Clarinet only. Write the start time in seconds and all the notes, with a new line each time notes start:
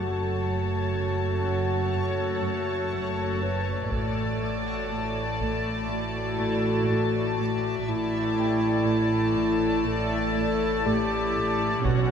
Already playing: F#4
3.42 B4
3.92 A4
5.91 F#4
7.89 E4
9.87 A4
10.87 G4
11.85 F#4